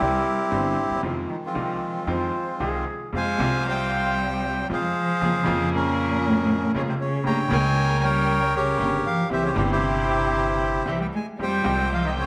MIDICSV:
0, 0, Header, 1, 7, 480
1, 0, Start_track
1, 0, Key_signature, -4, "minor"
1, 0, Tempo, 520382
1, 962, Time_signature, 4, 2, 24, 8
1, 4331, Tempo, 511945
1, 9131, Tempo, 520382
1, 11389, End_track
2, 0, Start_track
2, 0, Title_t, "Bandoneon"
2, 0, Program_c, 0, 23
2, 0, Note_on_c, 0, 60, 76
2, 0, Note_on_c, 0, 64, 71
2, 0, Note_on_c, 0, 67, 108
2, 936, Note_off_c, 0, 67, 0
2, 937, Note_off_c, 0, 60, 0
2, 937, Note_off_c, 0, 64, 0
2, 979, Note_on_c, 0, 60, 81
2, 983, Note_on_c, 0, 51, 68
2, 988, Note_on_c, 0, 56, 62
2, 1082, Note_off_c, 0, 60, 0
2, 1208, Note_on_c, 0, 63, 74
2, 1260, Note_off_c, 0, 63, 0
2, 1328, Note_off_c, 0, 56, 0
2, 1342, Note_on_c, 0, 56, 59
2, 1342, Note_on_c, 0, 65, 79
2, 1345, Note_on_c, 0, 60, 55
2, 1894, Note_off_c, 0, 51, 0
2, 2623, Note_off_c, 0, 56, 0
2, 2623, Note_off_c, 0, 65, 0
2, 2625, Note_off_c, 0, 60, 0
2, 2910, Note_on_c, 0, 77, 89
2, 2913, Note_on_c, 0, 72, 76
2, 2927, Note_on_c, 0, 80, 108
2, 3356, Note_off_c, 0, 80, 0
2, 3384, Note_off_c, 0, 72, 0
2, 3397, Note_on_c, 0, 72, 74
2, 3414, Note_on_c, 0, 79, 106
2, 3823, Note_off_c, 0, 77, 0
2, 4306, Note_off_c, 0, 72, 0
2, 4315, Note_off_c, 0, 79, 0
2, 4356, Note_on_c, 0, 68, 78
2, 4360, Note_on_c, 0, 72, 77
2, 4363, Note_on_c, 0, 77, 102
2, 5268, Note_off_c, 0, 68, 0
2, 5270, Note_off_c, 0, 72, 0
2, 5271, Note_off_c, 0, 77, 0
2, 5321, Note_on_c, 0, 61, 72
2, 5326, Note_on_c, 0, 70, 98
2, 6225, Note_off_c, 0, 61, 0
2, 6227, Note_off_c, 0, 70, 0
2, 6277, Note_on_c, 0, 73, 98
2, 6324, Note_off_c, 0, 73, 0
2, 6389, Note_on_c, 0, 72, 90
2, 6438, Note_off_c, 0, 72, 0
2, 6503, Note_on_c, 0, 73, 93
2, 6718, Note_off_c, 0, 73, 0
2, 6735, Note_on_c, 0, 79, 91
2, 6736, Note_on_c, 0, 73, 86
2, 6739, Note_on_c, 0, 82, 111
2, 6844, Note_off_c, 0, 82, 0
2, 6969, Note_off_c, 0, 73, 0
2, 6983, Note_on_c, 0, 73, 84
2, 6990, Note_on_c, 0, 80, 121
2, 7452, Note_off_c, 0, 73, 0
2, 7452, Note_off_c, 0, 79, 0
2, 7466, Note_on_c, 0, 73, 90
2, 7466, Note_on_c, 0, 79, 127
2, 7467, Note_on_c, 0, 70, 90
2, 7474, Note_off_c, 0, 80, 0
2, 7939, Note_off_c, 0, 73, 0
2, 7944, Note_off_c, 0, 70, 0
2, 7952, Note_off_c, 0, 79, 0
2, 7953, Note_on_c, 0, 73, 103
2, 7958, Note_on_c, 0, 70, 79
2, 7960, Note_on_c, 0, 67, 85
2, 8429, Note_on_c, 0, 77, 98
2, 8437, Note_off_c, 0, 73, 0
2, 8628, Note_off_c, 0, 70, 0
2, 8629, Note_off_c, 0, 67, 0
2, 8644, Note_off_c, 0, 77, 0
2, 8670, Note_on_c, 0, 76, 102
2, 8672, Note_on_c, 0, 72, 78
2, 8673, Note_on_c, 0, 67, 75
2, 8784, Note_off_c, 0, 76, 0
2, 8801, Note_on_c, 0, 73, 91
2, 8848, Note_off_c, 0, 73, 0
2, 8895, Note_off_c, 0, 72, 0
2, 8909, Note_on_c, 0, 72, 93
2, 8959, Note_off_c, 0, 72, 0
2, 9027, Note_off_c, 0, 67, 0
2, 9039, Note_on_c, 0, 64, 66
2, 9041, Note_on_c, 0, 67, 68
2, 9041, Note_on_c, 0, 72, 96
2, 10067, Note_off_c, 0, 64, 0
2, 10069, Note_off_c, 0, 67, 0
2, 10113, Note_on_c, 0, 76, 87
2, 10137, Note_off_c, 0, 72, 0
2, 10215, Note_off_c, 0, 76, 0
2, 10239, Note_on_c, 0, 79, 81
2, 10287, Note_off_c, 0, 79, 0
2, 10367, Note_on_c, 0, 80, 83
2, 10468, Note_off_c, 0, 80, 0
2, 10613, Note_on_c, 0, 79, 114
2, 10618, Note_on_c, 0, 72, 76
2, 11041, Note_off_c, 0, 79, 0
2, 11093, Note_on_c, 0, 77, 81
2, 11196, Note_off_c, 0, 77, 0
2, 11201, Note_on_c, 0, 75, 86
2, 11248, Note_off_c, 0, 75, 0
2, 11330, Note_on_c, 0, 73, 98
2, 11389, Note_off_c, 0, 72, 0
2, 11389, Note_off_c, 0, 73, 0
2, 11389, End_track
3, 0, Start_track
3, 0, Title_t, "Flute"
3, 0, Program_c, 1, 73
3, 9, Note_on_c, 1, 70, 80
3, 504, Note_on_c, 1, 72, 72
3, 518, Note_off_c, 1, 70, 0
3, 852, Note_off_c, 1, 72, 0
3, 1926, Note_on_c, 1, 72, 88
3, 2375, Note_off_c, 1, 72, 0
3, 2390, Note_on_c, 1, 68, 76
3, 2848, Note_off_c, 1, 68, 0
3, 11389, End_track
4, 0, Start_track
4, 0, Title_t, "String section"
4, 0, Program_c, 2, 48
4, 2895, Note_on_c, 2, 56, 54
4, 2899, Note_on_c, 2, 60, 49
4, 2903, Note_on_c, 2, 65, 64
4, 3094, Note_off_c, 2, 56, 0
4, 3096, Note_off_c, 2, 60, 0
4, 3098, Note_off_c, 2, 65, 0
4, 3128, Note_on_c, 2, 53, 91
4, 3131, Note_on_c, 2, 65, 95
4, 3135, Note_on_c, 2, 60, 81
4, 4269, Note_off_c, 2, 53, 0
4, 4271, Note_off_c, 2, 65, 0
4, 4272, Note_off_c, 2, 60, 0
4, 4347, Note_on_c, 2, 60, 50
4, 4347, Note_on_c, 2, 65, 56
4, 4350, Note_on_c, 2, 56, 50
4, 4541, Note_off_c, 2, 60, 0
4, 4541, Note_off_c, 2, 65, 0
4, 4543, Note_off_c, 2, 56, 0
4, 4824, Note_on_c, 2, 58, 60
4, 4824, Note_on_c, 2, 61, 51
4, 4828, Note_on_c, 2, 68, 69
4, 5020, Note_off_c, 2, 58, 0
4, 5020, Note_off_c, 2, 61, 0
4, 5022, Note_off_c, 2, 68, 0
4, 5060, Note_on_c, 2, 58, 86
4, 5063, Note_on_c, 2, 61, 85
4, 5068, Note_on_c, 2, 68, 105
4, 6192, Note_off_c, 2, 58, 0
4, 6193, Note_off_c, 2, 61, 0
4, 6196, Note_off_c, 2, 68, 0
4, 6254, Note_on_c, 2, 61, 50
4, 6256, Note_on_c, 2, 58, 57
4, 6260, Note_on_c, 2, 68, 61
4, 6451, Note_off_c, 2, 61, 0
4, 6452, Note_off_c, 2, 58, 0
4, 6455, Note_off_c, 2, 68, 0
4, 6732, Note_on_c, 2, 58, 57
4, 6739, Note_on_c, 2, 61, 55
4, 6739, Note_on_c, 2, 67, 61
4, 6930, Note_off_c, 2, 58, 0
4, 6934, Note_off_c, 2, 61, 0
4, 6934, Note_off_c, 2, 67, 0
4, 6972, Note_on_c, 2, 58, 103
4, 6973, Note_on_c, 2, 70, 106
4, 6975, Note_on_c, 2, 61, 83
4, 8112, Note_off_c, 2, 58, 0
4, 8112, Note_off_c, 2, 70, 0
4, 8114, Note_off_c, 2, 61, 0
4, 8166, Note_on_c, 2, 58, 52
4, 8167, Note_on_c, 2, 61, 50
4, 8171, Note_on_c, 2, 67, 63
4, 8370, Note_off_c, 2, 58, 0
4, 8370, Note_off_c, 2, 61, 0
4, 8372, Note_off_c, 2, 67, 0
4, 8649, Note_on_c, 2, 60, 55
4, 8650, Note_on_c, 2, 64, 51
4, 8651, Note_on_c, 2, 67, 65
4, 8852, Note_off_c, 2, 60, 0
4, 8852, Note_off_c, 2, 64, 0
4, 8852, Note_off_c, 2, 67, 0
4, 8878, Note_on_c, 2, 60, 93
4, 8882, Note_on_c, 2, 64, 88
4, 8882, Note_on_c, 2, 67, 108
4, 10023, Note_off_c, 2, 60, 0
4, 10026, Note_off_c, 2, 64, 0
4, 10026, Note_off_c, 2, 67, 0
4, 10098, Note_on_c, 2, 60, 51
4, 10098, Note_on_c, 2, 64, 47
4, 10102, Note_on_c, 2, 67, 56
4, 10298, Note_off_c, 2, 60, 0
4, 10298, Note_off_c, 2, 64, 0
4, 10300, Note_off_c, 2, 67, 0
4, 10588, Note_on_c, 2, 56, 51
4, 10589, Note_on_c, 2, 65, 49
4, 10594, Note_on_c, 2, 67, 58
4, 10782, Note_off_c, 2, 56, 0
4, 10783, Note_off_c, 2, 65, 0
4, 10785, Note_off_c, 2, 67, 0
4, 10825, Note_on_c, 2, 56, 91
4, 10825, Note_on_c, 2, 65, 88
4, 10828, Note_on_c, 2, 79, 104
4, 11389, Note_off_c, 2, 56, 0
4, 11389, Note_off_c, 2, 65, 0
4, 11389, Note_off_c, 2, 79, 0
4, 11389, End_track
5, 0, Start_track
5, 0, Title_t, "Upright piano"
5, 0, Program_c, 3, 0
5, 0, Note_on_c, 3, 36, 79
5, 0, Note_on_c, 3, 48, 77
5, 0, Note_on_c, 3, 52, 67
5, 0, Note_on_c, 3, 55, 63
5, 0, Note_on_c, 3, 60, 58
5, 0, Note_on_c, 3, 67, 71
5, 203, Note_off_c, 3, 36, 0
5, 203, Note_off_c, 3, 52, 0
5, 203, Note_off_c, 3, 60, 0
5, 204, Note_off_c, 3, 48, 0
5, 204, Note_off_c, 3, 55, 0
5, 204, Note_off_c, 3, 67, 0
5, 470, Note_on_c, 3, 55, 61
5, 471, Note_on_c, 3, 31, 75
5, 472, Note_on_c, 3, 52, 71
5, 472, Note_on_c, 3, 60, 60
5, 475, Note_on_c, 3, 43, 72
5, 479, Note_on_c, 3, 67, 75
5, 678, Note_off_c, 3, 31, 0
5, 678, Note_off_c, 3, 55, 0
5, 679, Note_off_c, 3, 52, 0
5, 679, Note_off_c, 3, 60, 0
5, 680, Note_off_c, 3, 43, 0
5, 682, Note_off_c, 3, 67, 0
5, 781, Note_on_c, 3, 38, 41
5, 837, Note_on_c, 3, 39, 50
5, 841, Note_off_c, 3, 38, 0
5, 893, Note_on_c, 3, 40, 60
5, 899, Note_off_c, 3, 39, 0
5, 947, Note_on_c, 3, 56, 55
5, 949, Note_on_c, 3, 51, 61
5, 949, Note_on_c, 3, 65, 65
5, 950, Note_on_c, 3, 53, 70
5, 951, Note_on_c, 3, 41, 72
5, 951, Note_on_c, 3, 60, 56
5, 957, Note_off_c, 3, 40, 0
5, 1155, Note_off_c, 3, 56, 0
5, 1156, Note_off_c, 3, 51, 0
5, 1156, Note_off_c, 3, 53, 0
5, 1156, Note_off_c, 3, 65, 0
5, 1157, Note_off_c, 3, 41, 0
5, 1157, Note_off_c, 3, 60, 0
5, 1426, Note_on_c, 3, 51, 59
5, 1429, Note_on_c, 3, 36, 65
5, 1429, Note_on_c, 3, 60, 46
5, 1431, Note_on_c, 3, 48, 71
5, 1432, Note_on_c, 3, 56, 49
5, 1432, Note_on_c, 3, 65, 62
5, 1634, Note_off_c, 3, 51, 0
5, 1635, Note_off_c, 3, 36, 0
5, 1635, Note_off_c, 3, 60, 0
5, 1636, Note_off_c, 3, 48, 0
5, 1637, Note_off_c, 3, 56, 0
5, 1637, Note_off_c, 3, 65, 0
5, 1908, Note_on_c, 3, 56, 51
5, 1914, Note_on_c, 3, 41, 73
5, 1914, Note_on_c, 3, 53, 68
5, 1915, Note_on_c, 3, 51, 61
5, 1916, Note_on_c, 3, 60, 60
5, 1918, Note_on_c, 3, 65, 74
5, 2117, Note_off_c, 3, 56, 0
5, 2120, Note_off_c, 3, 41, 0
5, 2120, Note_off_c, 3, 53, 0
5, 2121, Note_off_c, 3, 51, 0
5, 2121, Note_off_c, 3, 60, 0
5, 2122, Note_off_c, 3, 65, 0
5, 2397, Note_on_c, 3, 51, 60
5, 2400, Note_on_c, 3, 48, 70
5, 2401, Note_on_c, 3, 56, 58
5, 2402, Note_on_c, 3, 36, 77
5, 2402, Note_on_c, 3, 60, 57
5, 2405, Note_on_c, 3, 65, 68
5, 2606, Note_off_c, 3, 51, 0
5, 2607, Note_off_c, 3, 48, 0
5, 2608, Note_off_c, 3, 36, 0
5, 2608, Note_off_c, 3, 56, 0
5, 2608, Note_off_c, 3, 60, 0
5, 2610, Note_off_c, 3, 65, 0
5, 2884, Note_on_c, 3, 41, 59
5, 2885, Note_on_c, 3, 53, 61
5, 2886, Note_on_c, 3, 48, 53
5, 2888, Note_on_c, 3, 65, 53
5, 2889, Note_on_c, 3, 56, 41
5, 3089, Note_off_c, 3, 41, 0
5, 3089, Note_off_c, 3, 48, 0
5, 3090, Note_off_c, 3, 53, 0
5, 3090, Note_off_c, 3, 65, 0
5, 3091, Note_off_c, 3, 56, 0
5, 3112, Note_on_c, 3, 48, 70
5, 3124, Note_on_c, 3, 53, 68
5, 3125, Note_off_c, 3, 48, 0
5, 3131, Note_on_c, 3, 48, 90
5, 3134, Note_on_c, 3, 36, 92
5, 3136, Note_on_c, 3, 60, 73
5, 3147, Note_on_c, 3, 65, 86
5, 4267, Note_off_c, 3, 53, 0
5, 4270, Note_off_c, 3, 48, 0
5, 4272, Note_off_c, 3, 36, 0
5, 4273, Note_off_c, 3, 60, 0
5, 4279, Note_off_c, 3, 65, 0
5, 4332, Note_on_c, 3, 48, 50
5, 4332, Note_on_c, 3, 53, 61
5, 4332, Note_on_c, 3, 56, 50
5, 4334, Note_on_c, 3, 41, 64
5, 4334, Note_on_c, 3, 65, 57
5, 4534, Note_off_c, 3, 41, 0
5, 4534, Note_off_c, 3, 48, 0
5, 4534, Note_off_c, 3, 56, 0
5, 4534, Note_off_c, 3, 65, 0
5, 4537, Note_off_c, 3, 53, 0
5, 4816, Note_on_c, 3, 56, 43
5, 4817, Note_on_c, 3, 41, 62
5, 4817, Note_on_c, 3, 49, 53
5, 4818, Note_on_c, 3, 58, 44
5, 4821, Note_on_c, 3, 53, 56
5, 4821, Note_on_c, 3, 65, 59
5, 5010, Note_off_c, 3, 49, 0
5, 5016, Note_off_c, 3, 41, 0
5, 5016, Note_off_c, 3, 56, 0
5, 5017, Note_off_c, 3, 58, 0
5, 5018, Note_off_c, 3, 53, 0
5, 5018, Note_off_c, 3, 65, 0
5, 5024, Note_on_c, 3, 49, 79
5, 5036, Note_on_c, 3, 56, 68
5, 5042, Note_on_c, 3, 53, 95
5, 5047, Note_on_c, 3, 41, 99
5, 5051, Note_on_c, 3, 58, 76
5, 5059, Note_on_c, 3, 65, 82
5, 6174, Note_off_c, 3, 49, 0
5, 6180, Note_off_c, 3, 56, 0
5, 6183, Note_off_c, 3, 53, 0
5, 6186, Note_off_c, 3, 41, 0
5, 6187, Note_off_c, 3, 58, 0
5, 6192, Note_off_c, 3, 65, 0
5, 6250, Note_on_c, 3, 49, 55
5, 6253, Note_on_c, 3, 56, 50
5, 6254, Note_on_c, 3, 41, 65
5, 6254, Note_on_c, 3, 58, 53
5, 6254, Note_on_c, 3, 65, 67
5, 6256, Note_on_c, 3, 53, 62
5, 6449, Note_off_c, 3, 49, 0
5, 6451, Note_off_c, 3, 41, 0
5, 6451, Note_off_c, 3, 56, 0
5, 6451, Note_off_c, 3, 65, 0
5, 6452, Note_off_c, 3, 58, 0
5, 6453, Note_off_c, 3, 53, 0
5, 6714, Note_on_c, 3, 49, 55
5, 6718, Note_on_c, 3, 55, 51
5, 6718, Note_on_c, 3, 67, 56
5, 6719, Note_on_c, 3, 31, 63
5, 6719, Note_on_c, 3, 58, 47
5, 6720, Note_on_c, 3, 43, 60
5, 6921, Note_off_c, 3, 49, 0
5, 6923, Note_off_c, 3, 55, 0
5, 6923, Note_off_c, 3, 67, 0
5, 6924, Note_off_c, 3, 31, 0
5, 6924, Note_off_c, 3, 43, 0
5, 6924, Note_off_c, 3, 58, 0
5, 6947, Note_on_c, 3, 49, 74
5, 6961, Note_off_c, 3, 49, 0
5, 6966, Note_on_c, 3, 49, 99
5, 6968, Note_on_c, 3, 37, 97
5, 6972, Note_on_c, 3, 58, 80
5, 6988, Note_on_c, 3, 70, 90
5, 8109, Note_off_c, 3, 49, 0
5, 8110, Note_off_c, 3, 37, 0
5, 8112, Note_off_c, 3, 58, 0
5, 8120, Note_off_c, 3, 70, 0
5, 8154, Note_on_c, 3, 55, 54
5, 8155, Note_on_c, 3, 43, 61
5, 8155, Note_on_c, 3, 49, 53
5, 8155, Note_on_c, 3, 58, 52
5, 8156, Note_on_c, 3, 31, 70
5, 8159, Note_on_c, 3, 67, 63
5, 8364, Note_off_c, 3, 43, 0
5, 8364, Note_off_c, 3, 49, 0
5, 8364, Note_off_c, 3, 55, 0
5, 8365, Note_off_c, 3, 31, 0
5, 8365, Note_off_c, 3, 58, 0
5, 8366, Note_off_c, 3, 67, 0
5, 8640, Note_on_c, 3, 52, 51
5, 8642, Note_on_c, 3, 55, 47
5, 8643, Note_on_c, 3, 36, 60
5, 8643, Note_on_c, 3, 48, 58
5, 8643, Note_on_c, 3, 60, 48
5, 8647, Note_on_c, 3, 67, 58
5, 8847, Note_off_c, 3, 52, 0
5, 8848, Note_off_c, 3, 55, 0
5, 8849, Note_off_c, 3, 36, 0
5, 8849, Note_off_c, 3, 48, 0
5, 8849, Note_off_c, 3, 60, 0
5, 8850, Note_off_c, 3, 67, 0
5, 8871, Note_on_c, 3, 52, 78
5, 8886, Note_on_c, 3, 55, 72
5, 8892, Note_on_c, 3, 31, 93
5, 8892, Note_on_c, 3, 43, 84
5, 8899, Note_on_c, 3, 60, 72
5, 8908, Note_on_c, 3, 67, 92
5, 10020, Note_off_c, 3, 52, 0
5, 10027, Note_off_c, 3, 55, 0
5, 10030, Note_off_c, 3, 31, 0
5, 10030, Note_off_c, 3, 43, 0
5, 10034, Note_off_c, 3, 60, 0
5, 10038, Note_off_c, 3, 67, 0
5, 10092, Note_on_c, 3, 36, 61
5, 10092, Note_on_c, 3, 48, 61
5, 10093, Note_on_c, 3, 52, 54
5, 10093, Note_on_c, 3, 60, 49
5, 10094, Note_on_c, 3, 67, 57
5, 10095, Note_on_c, 3, 55, 50
5, 10295, Note_off_c, 3, 36, 0
5, 10295, Note_off_c, 3, 48, 0
5, 10296, Note_off_c, 3, 52, 0
5, 10296, Note_off_c, 3, 60, 0
5, 10296, Note_off_c, 3, 67, 0
5, 10297, Note_off_c, 3, 55, 0
5, 10583, Note_on_c, 3, 53, 61
5, 10587, Note_on_c, 3, 56, 44
5, 10588, Note_on_c, 3, 60, 48
5, 10593, Note_on_c, 3, 41, 57
5, 10594, Note_on_c, 3, 67, 58
5, 10782, Note_off_c, 3, 56, 0
5, 10782, Note_off_c, 3, 60, 0
5, 10784, Note_off_c, 3, 53, 0
5, 10785, Note_off_c, 3, 41, 0
5, 10785, Note_off_c, 3, 67, 0
5, 10800, Note_on_c, 3, 53, 77
5, 10813, Note_on_c, 3, 56, 66
5, 10816, Note_on_c, 3, 36, 89
5, 10816, Note_on_c, 3, 48, 91
5, 10825, Note_on_c, 3, 60, 70
5, 10834, Note_on_c, 3, 79, 80
5, 11389, Note_off_c, 3, 36, 0
5, 11389, Note_off_c, 3, 48, 0
5, 11389, Note_off_c, 3, 53, 0
5, 11389, Note_off_c, 3, 56, 0
5, 11389, Note_off_c, 3, 60, 0
5, 11389, Note_off_c, 3, 79, 0
5, 11389, End_track
6, 0, Start_track
6, 0, Title_t, "Cello"
6, 0, Program_c, 4, 42
6, 0, Note_on_c, 4, 55, 85
6, 930, Note_off_c, 4, 55, 0
6, 955, Note_on_c, 4, 48, 66
6, 1064, Note_off_c, 4, 48, 0
6, 1191, Note_on_c, 4, 51, 62
6, 1247, Note_off_c, 4, 51, 0
6, 1334, Note_on_c, 4, 53, 64
6, 2619, Note_off_c, 4, 53, 0
6, 2909, Note_on_c, 4, 56, 85
6, 3346, Note_off_c, 4, 56, 0
6, 3383, Note_on_c, 4, 55, 78
6, 4299, Note_off_c, 4, 55, 0
6, 4354, Note_on_c, 4, 53, 92
6, 5267, Note_off_c, 4, 53, 0
6, 5313, Note_on_c, 4, 46, 90
6, 6221, Note_off_c, 4, 46, 0
6, 6261, Note_on_c, 4, 49, 84
6, 6311, Note_off_c, 4, 49, 0
6, 6381, Note_on_c, 4, 48, 76
6, 6432, Note_off_c, 4, 48, 0
6, 6496, Note_on_c, 4, 49, 84
6, 6714, Note_off_c, 4, 49, 0
6, 6743, Note_on_c, 4, 58, 93
6, 6847, Note_off_c, 4, 58, 0
6, 6978, Note_on_c, 4, 56, 90
6, 7421, Note_off_c, 4, 56, 0
6, 7454, Note_on_c, 4, 55, 86
6, 7898, Note_off_c, 4, 55, 0
6, 7940, Note_on_c, 4, 49, 84
6, 8383, Note_off_c, 4, 49, 0
6, 8423, Note_on_c, 4, 53, 88
6, 8641, Note_off_c, 4, 53, 0
6, 8655, Note_on_c, 4, 52, 86
6, 8759, Note_off_c, 4, 52, 0
6, 8765, Note_on_c, 4, 49, 80
6, 8820, Note_off_c, 4, 49, 0
6, 8888, Note_on_c, 4, 48, 80
6, 8943, Note_off_c, 4, 48, 0
6, 9015, Note_on_c, 4, 48, 84
6, 10056, Note_off_c, 4, 48, 0
6, 10090, Note_on_c, 4, 52, 78
6, 10203, Note_off_c, 4, 52, 0
6, 10226, Note_on_c, 4, 55, 75
6, 10277, Note_off_c, 4, 55, 0
6, 10343, Note_on_c, 4, 56, 86
6, 10449, Note_off_c, 4, 56, 0
6, 10585, Note_on_c, 4, 55, 89
6, 11026, Note_off_c, 4, 55, 0
6, 11071, Note_on_c, 4, 53, 79
6, 11174, Note_off_c, 4, 53, 0
6, 11189, Note_on_c, 4, 51, 73
6, 11239, Note_off_c, 4, 51, 0
6, 11310, Note_on_c, 4, 49, 63
6, 11389, Note_off_c, 4, 49, 0
6, 11389, End_track
7, 0, Start_track
7, 0, Title_t, "Upright bass"
7, 0, Program_c, 5, 32
7, 10, Note_on_c, 5, 36, 93
7, 210, Note_off_c, 5, 36, 0
7, 480, Note_on_c, 5, 31, 89
7, 683, Note_off_c, 5, 31, 0
7, 778, Note_on_c, 5, 38, 40
7, 830, Note_off_c, 5, 38, 0
7, 836, Note_on_c, 5, 39, 48
7, 887, Note_off_c, 5, 39, 0
7, 893, Note_on_c, 5, 40, 55
7, 948, Note_off_c, 5, 40, 0
7, 954, Note_on_c, 5, 41, 70
7, 1158, Note_off_c, 5, 41, 0
7, 1432, Note_on_c, 5, 36, 78
7, 1637, Note_off_c, 5, 36, 0
7, 1910, Note_on_c, 5, 41, 84
7, 2118, Note_off_c, 5, 41, 0
7, 2401, Note_on_c, 5, 36, 82
7, 2608, Note_off_c, 5, 36, 0
7, 2885, Note_on_c, 5, 41, 64
7, 3089, Note_off_c, 5, 41, 0
7, 3128, Note_on_c, 5, 36, 94
7, 4269, Note_off_c, 5, 36, 0
7, 4337, Note_on_c, 5, 41, 75
7, 4536, Note_off_c, 5, 41, 0
7, 4822, Note_on_c, 5, 41, 64
7, 5019, Note_off_c, 5, 41, 0
7, 5062, Note_on_c, 5, 41, 101
7, 6193, Note_off_c, 5, 41, 0
7, 6253, Note_on_c, 5, 41, 71
7, 6451, Note_off_c, 5, 41, 0
7, 6735, Note_on_c, 5, 31, 61
7, 6932, Note_off_c, 5, 31, 0
7, 6970, Note_on_c, 5, 37, 99
7, 8111, Note_off_c, 5, 37, 0
7, 8175, Note_on_c, 5, 31, 77
7, 8374, Note_off_c, 5, 31, 0
7, 8654, Note_on_c, 5, 36, 63
7, 8854, Note_off_c, 5, 36, 0
7, 8892, Note_on_c, 5, 31, 100
7, 10031, Note_off_c, 5, 31, 0
7, 10092, Note_on_c, 5, 36, 72
7, 10295, Note_off_c, 5, 36, 0
7, 10584, Note_on_c, 5, 41, 58
7, 10780, Note_off_c, 5, 41, 0
7, 10830, Note_on_c, 5, 36, 91
7, 11389, Note_off_c, 5, 36, 0
7, 11389, End_track
0, 0, End_of_file